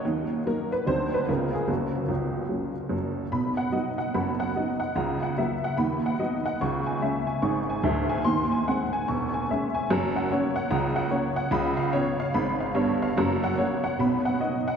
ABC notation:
X:1
M:4/4
L:1/8
Q:"Swing" 1/4=146
K:F#
V:1 name="Honky-tonk piano"
z2 A B =c B A G | F6 z2 | [K:B] b f d f b f d f | a f e f b f d f |
c' g e g c' g e g | ^b g f g c' g e g | [K:F#] a f c f a f c f | b e c e b e c e |
a f c f b f d f |]
V:2 name="Honky-tonk piano" clef=bass
[D,,D,]2 [F,A,D]2 [=D,,=D,F,=C]2 [^C,,C,E,B,^C]2 | [F,,,F,,]2 C,,2 [F,A,C]2 [F,,,F,,]2 | [K:B] [B,,,B,,]2 [F,B,D]2 [F,,,F,,]2 [F,B,D]2 | [C,,C,]2 [F,A,]2 [D,,D,]2 [F,B,D]2 |
[C,,C,]2 [G,C]2 [G,,,G,,]2 [=D,,,=D,,]2 | [D,,D,]2 [G,^B,]2 [E,,,E,,]2 [G,C]2 | [K:F#] [F,,,F,,]2 [A,C]2 [C,,C,]2 [A,C]2 | [C,,C,]2 [B,C]2 [G,,,G,,]2 [=G,,,=G,,]2 |
[F,,,F,,]2 [A,C]2 [B,,,B,,]2 [B,D]2 |]